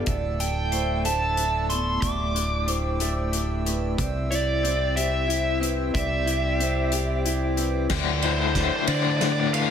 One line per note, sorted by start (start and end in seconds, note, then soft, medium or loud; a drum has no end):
0.00 2.61 D4 soft
0.00 3.95 D4 soft
0.05 1.99 D1 soft
0.05 1.71 D2 soft
0.05 7.85 E4 soft
0.05 2.01 A4 soft
0.05 0.73 D5 medium
0.05 3.94 E5 medium
0.05 kick medium
0.05 closed hi-hat medium
0.40 1.36 D3 soft
0.40 1.05 G5 medium
0.40 closed hi-hat soft
0.72 1.69 A2 soft
0.72 1.38 C5 medium
0.72 closed hi-hat soft
1.05 2.68 A3 medium
1.05 1.67 A5 medium
1.05 closed hi-hat medium
1.37 2.34 D3 soft
1.37 closed hi-hat soft
1.70 2.67 A2 soft
1.70 2.03 B3 medium
1.70 2.01 C6 medium
1.70 closed hi-hat soft
2.02 3.94 D1 soft
2.02 3.66 D2 soft
2.02 7.87 G4 soft
2.02 2.68 D5 medium
2.02 3.62 D6 medium
2.02 kick medium
2.02 closed hi-hat medium
2.35 3.33 D3 soft
2.35 closed hi-hat soft
2.67 3.64 A2 soft
2.67 3.33 C5 medium
2.67 closed hi-hat soft
3.00 3.99 A3 medium
3.00 closed hi-hat medium
3.33 3.99 D3 soft
3.33 closed hi-hat medium
3.66 3.99 A2 medium
3.66 3.99 B4 medium
3.66 closed hi-hat soft
3.96 5.91 C2 medium
3.96 5.62 C3 soft
3.96 7.85 C4 medium
3.96 4.64 D5 medium
3.96 5.92 E5 medium
3.96 kick medium
3.96 closed hi-hat medium
4.31 5.27 E4 soft
4.31 4.96 D5 medium
4.31 closed hi-hat soft
4.63 5.59 C4 medium
4.63 5.29 C5 medium
4.63 closed hi-hat soft
4.96 6.59 G4 medium
4.96 5.58 E5 medium
4.96 closed hi-hat medium
5.28 6.25 E4 soft
5.28 closed hi-hat soft
5.60 6.58 C4 medium
5.60 5.94 B4 medium
5.60 closed hi-hat soft
5.94 7.86 C2 medium
5.94 7.57 C3 medium
5.94 7.88 D5 medium
5.94 6.60 D5 medium
5.94 7.21 E5 medium
5.94 kick medium
5.94 closed hi-hat medium
6.26 7.24 E4 medium
6.26 closed hi-hat soft
6.59 7.56 C4 soft
6.59 7.25 C5 medium
6.59 closed hi-hat soft
6.92 7.90 G4 medium
6.92 closed hi-hat medium
7.25 7.90 E4 medium
7.25 closed hi-hat soft
7.57 7.90 C4 medium
7.57 7.90 B4 medium
7.57 closed hi-hat soft
7.89 9.53 D2 medium
7.89 8.22 D2 medium
7.89 8.68 D2 medium
7.89 8.22 A2 medium
7.89 8.23 D3 medium
7.89 9.71 E3 medium
7.89 9.71 A3 medium
7.89 9.71 D4 medium
7.89 9.71 D5 medium
7.89 8.56 D5 medium
7.89 kick medium
7.89 snare soft
7.89 crash medium
8.22 8.54 D2 medium
8.22 8.54 A2 medium
8.22 8.56 D3 medium
8.22 9.71 E4 medium
8.22 8.31 C5 medium
8.22 ride medium
8.31 8.38 C5 soft
8.39 8.46 C5 medium
8.47 8.53 C5 soft
8.53 8.86 D2 medium
8.53 8.87 A2 medium
8.53 8.88 D3 medium
8.53 9.20 A3 medium
8.53 8.61 C5 medium
8.53 9.21 C5 medium
8.53 kick medium
8.53 snare soft
8.53 ride medium
8.61 8.68 C5 soft
8.69 8.76 C5 medium
8.76 8.84 C5 soft
8.87 9.51 D2 medium
8.87 9.52 A2 medium
8.87 9.66 D3 medium
8.87 9.53 D3 medium
8.87 8.94 D5 medium
8.87 ride medium
8.95 9.02 D5 medium
9.03 9.10 D5 medium
9.10 9.17 D5 medium
9.17 9.71 A3 medium
9.17 9.25 D5 medium
9.17 snare soft
9.17 ride medium
9.25 9.32 D5 medium
9.32 9.40 D5 medium
9.40 9.47 D5 medium
9.48 9.54 D5 medium
9.52 9.71 D2 medium
9.52 9.71 A2 medium
9.52 9.71 D3 medium
9.52 9.71 B4 medium
9.52 9.71 F5 medium
9.52 ride medium